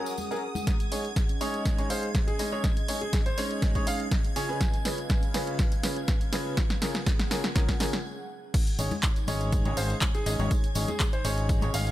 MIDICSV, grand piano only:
0, 0, Header, 1, 2, 480
1, 0, Start_track
1, 0, Tempo, 491803
1, 656, Time_signature, 4, 2, 24, 8
1, 11628, End_track
2, 0, Start_track
2, 0, Title_t, "Grand piano"
2, 0, Program_c, 0, 0
2, 1853, Note_on_c, 0, 72, 86
2, 2002, Note_off_c, 0, 72, 0
2, 2221, Note_on_c, 0, 68, 90
2, 2358, Note_off_c, 0, 68, 0
2, 2941, Note_on_c, 0, 68, 88
2, 3078, Note_off_c, 0, 68, 0
2, 3182, Note_on_c, 0, 72, 91
2, 3319, Note_off_c, 0, 72, 0
2, 3776, Note_on_c, 0, 77, 92
2, 3923, Note_off_c, 0, 77, 0
2, 4257, Note_on_c, 0, 80, 90
2, 4737, Note_off_c, 0, 80, 0
2, 9536, Note_on_c, 0, 72, 95
2, 9683, Note_off_c, 0, 72, 0
2, 9903, Note_on_c, 0, 68, 92
2, 10039, Note_off_c, 0, 68, 0
2, 10623, Note_on_c, 0, 68, 89
2, 10759, Note_off_c, 0, 68, 0
2, 10862, Note_on_c, 0, 72, 90
2, 10999, Note_off_c, 0, 72, 0
2, 11457, Note_on_c, 0, 77, 94
2, 11603, Note_off_c, 0, 77, 0
2, 11628, End_track
0, 0, End_of_file